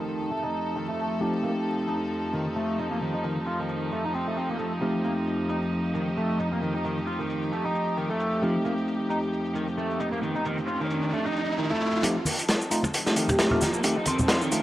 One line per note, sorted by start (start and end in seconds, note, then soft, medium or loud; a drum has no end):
0.00 12.00 F2 medium
0.00 0.30 D#3 medium
0.00 12.00 F3 medium
0.00 1.19 A3 medium
0.00 1.19 C4 medium
0.00 1.19 D#4 medium
0.00 12.00 D#4 medium
0.00 1.19 G4 medium
0.00 4.81 A4 medium
0.08 shaker medium
0.21 shaker soft
0.31 0.42 A3 medium
0.31 shaker soft
0.43 0.75 D#4 loud
0.43 shaker soft
0.53 shaker medium
0.66 shaker soft
0.76 0.87 D#3 medium
0.76 shaker soft
0.88 1.20 A3 medium
0.88 shaker soft
0.98 shaker medium
1.11 shaker soft
1.21 1.33 F3 medium
1.21 4.79 A3 medium
1.21 4.79 C4 medium
1.21 4.80 D#4 medium
1.21 4.79 G4 medium
1.21 shaker soft
1.43 1.50 A#3 medium
1.43 shaker medium
1.57 shaker soft
1.66 shaker soft
1.88 1.95 D#4 loud
1.88 shaker medium
2.01 shaker soft
2.11 shaker soft
2.24 shaker soft
2.33 2.44 D#3 medium
2.33 shaker medium
2.46 shaker soft
2.56 2.78 A3 medium
2.56 shaker soft
2.69 shaker soft
2.79 2.85 D#4 medium
2.79 shaker medium
2.91 2.97 A#3 medium
2.91 shaker soft
3.01 3.13 D#3 medium
3.01 shaker soft
3.14 3.23 D#4 medium
3.14 shaker soft
3.24 3.35 D#3 loud
3.24 shaker medium
3.36 shaker soft
3.46 3.58 F4 medium
3.46 shaker soft
3.58 3.91 D#3 medium
3.58 shaker soft
3.69 shaker medium
3.82 shaker soft
3.91 4.03 A3 medium
3.91 shaker soft
4.04 4.14 D#4 loud
4.04 shaker soft
4.14 4.26 C4 medium
4.14 shaker medium
4.27 4.37 A3 medium
4.27 shaker soft
4.37 4.48 C4 medium
4.37 shaker soft
4.49 4.59 A#3 medium
4.49 shaker soft
4.59 4.71 A3 medium
4.59 shaker medium
4.71 shaker soft
4.81 4.94 F3 medium
4.81 8.40 A3 medium
4.81 8.40 C4 medium
4.81 8.40 D#4 medium
4.81 8.40 G4 medium
4.81 12.02 G4 medium
4.81 shaker soft
5.04 5.11 A#3 medium
5.04 shaker medium
5.17 shaker soft
5.27 shaker soft
5.49 5.56 D#4 loud
5.49 shaker medium
5.62 shaker soft
5.72 shaker soft
5.85 shaker soft
5.95 6.05 D#3 loud
5.95 shaker medium
6.07 shaker soft
6.17 6.39 A3 medium
6.17 shaker soft
6.30 shaker soft
6.39 6.46 D#4 loud
6.39 shaker medium
6.52 6.58 A#3 medium
6.52 shaker soft
6.62 6.73 D#3 medium
6.62 shaker soft
6.75 6.84 D#4 medium
6.75 shaker soft
6.85 6.96 D#3 loud
6.85 shaker medium
6.97 shaker soft
7.07 7.18 F4 medium
7.07 shaker soft
7.20 7.51 D#3 medium
7.20 shaker soft
7.30 shaker medium
7.42 shaker soft
7.52 7.64 A3 medium
7.52 shaker soft
7.65 7.97 D#4 loud
7.65 shaker soft
7.75 shaker medium
7.87 shaker soft
7.97 8.08 D#3 loud
7.97 shaker soft
8.10 8.42 A3 loud
8.10 shaker soft
8.20 shaker medium
8.33 shaker soft
8.42 8.55 F3 medium
8.42 12.01 A3 medium
8.42 12.01 C4 medium
8.42 12.01 D#4 medium
8.42 12.01 G4 medium
8.42 riser medium
8.42 shaker soft
8.65 8.72 A#3 medium
8.65 shaker medium
8.78 shaker soft
8.88 shaker soft
9.10 9.17 D#4 loud
9.10 shaker medium
9.23 shaker soft
9.33 shaker soft
9.45 shaker soft
9.55 9.66 D#3 medium
9.55 shaker medium
9.68 shaker soft
9.78 9.99 A3 medium
9.78 shaker soft
9.90 shaker soft
10.00 10.07 D#4 loud
10.00 shaker medium
10.12 10.18 A#3 loud
10.12 shaker soft
10.23 10.34 D#3 medium
10.23 shaker soft
10.35 10.45 D#4 loud
10.35 shaker soft
10.45 10.56 D#3 loud
10.45 shaker medium
10.58 shaker soft
10.68 10.79 F4 medium
10.68 shaker soft
10.80 11.12 D#3 medium
10.80 shaker soft
10.90 shaker medium
11.03 shaker soft
11.13 11.25 A3 medium
11.13 shaker soft
11.26 11.57 D#4 loud
11.26 shaker soft
11.36 shaker medium
11.49 shaker soft
11.58 11.69 D#3 loud
11.58 shaker soft
11.71 12.03 A3 loud
11.71 shaker soft
11.81 shaker medium
11.94 shaker soft
12.03 12.45 F1 loud
12.03 12.15 F3 medium
12.03 14.63 F3 medium
12.03 12.15 A3 medium
12.03 12.15 C4 medium
12.03 14.63 C4 medium
12.03 14.63 D#4 medium
12.03 12.15 D#4 medium
12.03 12.15 G4 medium
12.03 14.63 A4 medium
12.03 kick loud
12.03 closed hi-hat medium
12.03 riser medium
12.03 shaker soft
12.25 12.33 A#3 medium
12.25 open hi-hat medium
12.25 high conga medium
12.25 shaker medium
12.39 closed hi-hat soft
12.39 shaker soft
12.48 13.12 F1 loud
12.48 snare loud
12.48 closed hi-hat medium
12.48 shaker soft
12.62 shaker soft
12.71 12.82 A3 medium
12.71 12.82 C4 medium
12.71 12.78 D#4 loud
12.71 12.82 D#4 medium
12.71 12.82 F4 medium
12.71 closed hi-hat medium
12.71 shaker medium
12.83 kick loud
12.83 high conga medium
12.83 shaker soft
12.94 closed hi-hat medium
12.94 shaker soft
13.06 13.49 A3 medium
13.06 13.49 C4 medium
13.06 13.49 D#4 medium
13.06 13.49 G4 medium
13.06 snare medium
13.06 shaker soft
13.16 13.26 F1 medium
13.16 13.27 D#3 loud
13.16 closed hi-hat medium
13.16 shaker medium
13.28 13.46 G4 medium
13.28 kick medium
13.28 high conga medium
13.28 low conga medium
13.28 shaker soft
13.39 13.61 A3 medium
13.39 snare loud
13.39 closed hi-hat medium
13.39 shaker soft
13.51 13.60 A3 medium
13.51 13.60 C4 medium
13.51 13.60 D#4 medium
13.51 13.58 F4 medium
13.51 13.60 G4 loud
13.51 low conga medium
13.61 13.79 F1 loud
13.61 13.68 D#4 loud
13.61 13.70 F4 medium
13.61 snare soft
13.61 closed hi-hat medium
13.61 high conga medium
13.61 shaker medium
13.74 13.79 A#3 loud
13.74 shaker soft
13.84 14.25 F1 loud
13.84 13.95 D#3 medium
13.84 13.95 A3 medium
13.84 13.95 C4 medium
13.84 13.95 D#4 medium
13.84 13.95 G4 loud
13.84 kick loud
13.84 closed hi-hat loud
13.84 shaker soft
13.97 14.06 D#4 loud
14.06 14.18 D#3 loud
14.06 14.25 C4 medium
14.06 closed hi-hat medium
14.06 high conga medium
14.06 shaker medium
14.19 low conga loud
14.19 shaker soft
14.28 14.40 F4 medium
14.28 snare loud
14.28 closed hi-hat medium
14.28 shaker soft
14.41 14.63 D#3 medium
14.41 shaker soft
14.52 14.63 A3 medium
14.52 14.63 C4 medium
14.52 14.63 D#4 medium
14.52 14.63 F4 medium
14.52 closed hi-hat medium
14.52 shaker medium